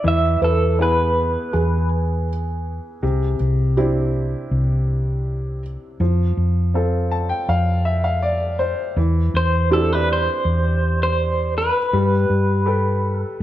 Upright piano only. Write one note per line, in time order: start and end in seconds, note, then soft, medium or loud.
0.04 2.98 E3 soft
0.79 2.98 B3 soft
0.79 2.98 E4 soft
0.79 2.98 G#4 soft
3.03 5.96 C3 soft
3.78 5.96 C4 soft
3.78 5.97 D4 soft
3.78 5.96 E4 soft
6.01 8.93 F3 soft
6.74 8.93 C4 soft
6.74 8.93 F4 soft
6.74 8.93 A4 soft
7.11 7.29 A5 soft
7.29 7.47 G5 soft
7.49 7.83 F5 medium
7.85 8.03 E5 medium
8.04 8.21 F5 medium
8.22 8.57 D5 medium
8.59 8.94 C5 medium
8.97 11.89 E3 soft
9.71 11.89 C4 soft
9.71 11.89 D4 soft
9.71 11.89 E4 soft
11.93 13.43 G3 soft
12.66 13.43 G4 soft
12.66 13.43 A4 soft
12.66 13.43 B4 soft